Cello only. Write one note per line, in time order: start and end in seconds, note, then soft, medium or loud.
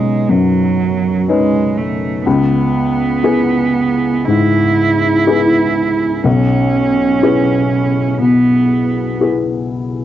0.00 0.31 G#3 medium
0.29 1.30 F#3 medium
1.29 1.79 G#3 medium
1.77 2.25 A3 medium
2.26 4.27 B3 medium
4.25 6.25 E4 medium
6.23 8.21 C#4 medium
8.22 9.19 B3 medium